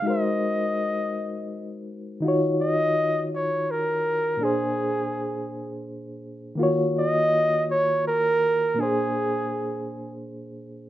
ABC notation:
X:1
M:6/8
L:1/8
Q:3/8=55
K:Ebdor
V:1 name="Flugelhorn"
e4- e z | z e2 d B2 | A4 z2 | z e2 d B2 |
A4 z2 |]
V:2 name="Reed electric piano"
[A,EGBc]6 | [E,EFGd]6 | [B,,B,=DAc]6 | [E,B,FGd]6 |
[B,,B,=DAc]6 |]